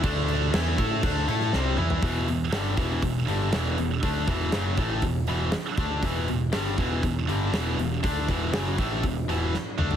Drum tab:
CC |x-x-x-x-x-x-----|----------------|----------------|----------------|
HH |----------------|o-o-o-o-o-o-o-o-|o-o-o-o-o-o-o-o-|o-o-o-o-o-o-o-o-|
SD |----o------oo---|----o-------o---|----o-------o---|----o-------o---|
T2 |--------------o-|----------------|----------------|----------------|
FT |---------------o|----------------|----------------|----------------|
BD |o-----o-o-------|o-----o-o-------|o-o---o-o-----o-|o-----o-o-------|

CC |----------------|
HH |o-o-o-o-o-o-----|
SD |----o-------o---|
T2 |--------------o-|
FT |---------------o|
BD |o-o---o-o-------|